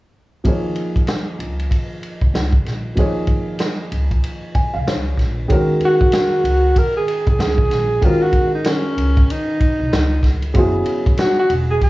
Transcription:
0.44 D#2 F3 A#3 D#4 G#4, kick, ride
0.48 C#5
0.75 ride
0.96 kick, ride
1.07 snare, hi-hat pedal, ride
1.39 C#2, ride
1.59 ride
1.71 kick, ride
2.03 ride
2.21 C2, kick
2.34 C#2, snare, hi-hat pedal, ride
2.53 kick
2.65 A#1, snare, ride
2.96 D#2 F3 A#3 D#4 G#4, kick, ride
3.00 C#5
3.27 kick, ride
3.59 snare, hi-hat pedal, ride
3.92 C#2, ride
4.11 kick, ride
4.24 ride
4.55 G#5, kick, ride
4.74 C2 F5
4.87 C#2 C#5, snare, hi-hat pedal, ride
5.17 A#1, kick, snare, ride
5.48 D#2 D#3 G#3 C#4 F#4, kick, ride
5.52 A#4
5.81 ride
5.85 F#4
6.01 kick
6.12 snare, hi-hat pedal, ride
6.44 C#2, ride
6.76 A#4, kick, ride
6.97 G#4
7.08 ride
7.27 C2 G#4, kick, ride
7.39 C#2, snare, hi-hat pedal, ride
7.58 kick
7.71 A#1, snare, ride
8.02 D#2 D#3 G#3 C#4 F4 F#4, kick, ride
8.06 A#4
8.23 F#4
8.33 kick, ride
8.55 D#4
8.65 C#4, snare, hi-hat pedal, ride
8.97 C#2, ride
9.17 kick, ride
9.30 D#4, ride
9.60 kick, ride
9.79 C2
9.92 C#2, snare, hi-hat pedal, ride
10.23 C#2, kick, snare, ride
10.42 ride
10.54 F#1 C#3 F#3 B3 E4, kick, ride
10.59 G#4
10.85 ride
11.06 kick, ride
11.17 F#4, snare, hi-hat pedal, ride
11.40 F#4
11.50 E1, ride
11.71 G#4
11.81 G#4, kick, ride

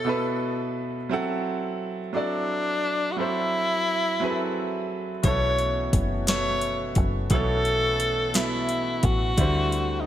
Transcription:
Already playing: B2 B3 E4 A4 C#5
0.05 B2 B3 E4 A4
0.09 B4
1.09 F#3 C4 E4 A4 F#5
2.13 F#3 C4 D4 E4 A4 D5
3.12 F#4
3.17 F#3 C4 E4 A4 C5
4.20 F#3 C4 E4 G#4 B4
4.30 A4
5.23 B1 B2 E3 A3 B3 C#4 E4 F#4 C#5, kick, closed hi-hat
5.27 A4 C#5
5.58 closed hi-hat
5.93 F#1, kick, closed hi-hat
6.27 B2 B3 E4 A4 C#5 E5, snare, closed hi-hat
6.61 closed hi-hat
6.95 F#1, kick, closed hi-hat
7.30 B1 B2 B3 E4 A4, kick, closed hi-hat
7.35 C#5
7.65 closed hi-hat
8.00 closed hi-hat
8.34 B2 B3 E4 A4, snare, closed hi-hat
8.38 E5
8.69 closed hi-hat
9.03 A1 F#4, kick, closed hi-hat
9.37 D2 D3 G3 A3 C4 E4 C5, kick, closed hi-hat
9.72 closed hi-hat
10.00 D#4

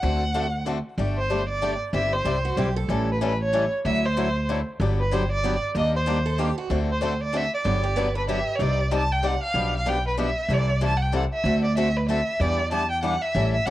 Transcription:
Already playing: F#5
0.03 D2 D3 A3 C4 F#4 A4
0.34 D3 A3 C4 F#4 A4
0.65 D3 A3 C4 F#4 A4
0.98 G1 G3 A3 D4 G4 D5
1.18 C5
1.30 G3 A3 D4 G4 D5
1.49 D5
1.62 G3 A3 D4 G4 D5
1.93 G1 C3 G3 C4 E4 G4 E5
2.13 C5
2.25 C2 C3 G3 C4 E4 G4
2.45 F#4
2.57 B1 C3 G3 C4 E4 G4
2.76 A4
2.88 A1 E3 G3 C#4 E4 A4
3.12 B4
3.21 E3 G3 C#4 E4 A4 B4
3.43 C#5
3.53 E3 G3 C#4 E4 A4
3.85 D2 D3 F#3 A3 E4 F#4 A4 E5
4.06 C5
4.17 D3 F#3 A3 E4 F#4 A4
4.49 D3 F#3 A3 E4 F#4 A4
4.80 G1 D3 F#3 B3 D4 G4
5.00 B4
5.12 D3 F#3 B3 D4 G4 C5
5.32 D5
5.43 D3 F#3 B3 D4 G4
5.75 D#2 D#3 G3 A#3 D4 G4 D#5
5.96 C5
6.07 D#3 G3 A#3 D4 G4
6.26 A4
6.39 D#3 G3 A#3 D4 G4
6.58 F#4
6.70 D2 D3 A3 C4 F#4 A4
6.92 C5
7.01 D3 A3 C4 F#4 A4 C5
7.24 D5
7.33 D3 A3 C4 F#4 A4 E5
7.55 D5
7.65 G1 D3 F#3 B3 D4 G4
7.84 G4
7.96 D3 F#3 B3 D4 G4 B4
8.15 A4 B4
8.28 D3 F#3 B3 D4 G4 E5
8.56 C2 C3 G3 C4 C#5
8.60 D#4 G4 D5
8.91 C3 G3 C4 D#4 G4 D5 A5
9.12 G5
9.23 C3 G3 C4 D#4 G4 D5 F#5
9.44 F5
9.54 B1 B2 F3 B3 D4 G4 B4
9.76 F5
9.86 B2 F3 B3 D4 G4 B4 G5
10.08 B4
10.17 B2 F3 B3 D4 G4 B4 E5
10.49 C2 C3 E3 G3 C4 E4 A4
10.53 D5
10.81 C3 E3 G3 C4 E4 A4 A5
10.97 F#5
11.02 G5
11.13 C3 E3 G3 C4 E4 A4 F#5
11.33 E5
11.44 D2 D3 A3 C4 F#4 A4
11.65 D5
11.76 D3 A3 C4 F#4 A4 E5
11.97 B4
12.08 D3 A3 C4 F#4 A4 E5
12.39 E2 E3 G3 B3 D4 E4 G4 B4 D5
12.71 E3 G3 B3 D4 E4 G4 B4 A5
12.91 G5
13.03 E3 G3 B3 D4 E4 G4 B4 F#5
13.22 E5
13.35 A1 E3 G3 C#4 E4 A4
13.54 E5
13.66 B1 E3 G3 C#4 E4 F#5

